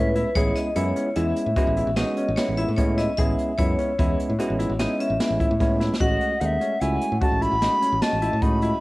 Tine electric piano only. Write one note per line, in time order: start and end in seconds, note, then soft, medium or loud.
0.00 0.28 G#3 medium
0.00 0.28 B3 medium
0.00 0.28 C#4 medium
0.00 0.28 E4 medium
0.36 0.69 G#3 medium
0.36 0.69 B3 medium
0.36 0.69 C#4 medium
0.36 0.69 E4 loud
0.76 1.09 G#3 medium
0.76 1.09 B3 medium
0.76 1.09 C#4 medium
0.76 1.09 E4 medium
1.16 1.49 G#3 medium
1.16 1.49 B3 medium
1.16 1.49 C#4 medium
1.16 1.49 E4 medium
1.57 1.90 G#3 loud
1.57 1.90 B3 medium
1.57 1.90 C#4 medium
1.57 1.90 E4 loud
1.97 2.30 G#3 medium
1.97 2.30 B3 medium
1.97 2.30 C#4 medium
1.97 2.30 F#4 medium
2.38 2.70 G#3 medium
2.38 2.71 B3 medium
2.38 2.71 C#4 medium
2.38 2.71 E4 medium
2.78 3.11 G#3 medium
2.78 3.11 B3 medium
2.78 3.11 C#4 medium
2.78 3.11 E4 medium
3.19 3.51 G#3 medium
3.19 3.52 B3 medium
3.19 3.52 C#4 medium
3.19 3.52 E4 loud
3.59 3.92 G#3 medium
3.59 3.92 B3 medium
3.59 3.92 C#4 medium
3.59 3.92 E4 medium
3.99 4.32 G#3 medium
3.99 4.32 B3 medium
3.99 4.32 C#4 medium
3.99 4.32 E4 medium
4.40 4.72 G#3 medium
4.40 4.72 B3 medium
4.40 4.72 C#4 medium
4.40 4.73 E4 loud
4.80 5.13 G#3 medium
4.80 5.13 B3 medium
4.80 5.13 C#4 medium
4.80 5.13 E4 medium
5.20 5.53 G#3 medium
5.20 5.53 B3 medium
5.20 5.53 C#4 medium
5.20 5.53 E4 medium
5.60 5.93 G#3 medium
5.60 5.93 B3 medium
5.60 5.93 C#4 medium
5.60 5.93 E4 medium
6.01 6.34 G#3 medium
6.01 6.34 A3 medium
6.01 6.34 C#4 medium
6.01 6.34 F#4 medium
6.41 6.74 G#3 medium
6.41 6.74 A3 medium
6.41 6.74 C#4 medium
6.41 6.74 G#4 medium
6.82 7.14 G#3 medium
6.82 7.14 A3 medium
6.82 7.14 C#4 medium
6.82 7.14 F#4 medium
7.22 7.55 G#3 medium
7.22 7.55 A3 medium
7.22 7.55 C#4 medium
7.22 7.55 F#4 medium
7.62 7.95 G#3 medium
7.62 7.95 A3 medium
7.62 7.95 C#4 medium
7.62 7.95 F#4 medium
8.02 8.35 G#3 medium
8.02 8.35 A3 medium
8.02 8.35 C#4 medium
8.02 8.35 F#4 medium
8.43 8.75 G#3 medium
8.43 8.75 A3 medium
8.43 8.75 C#4 medium
8.43 8.76 F#4 medium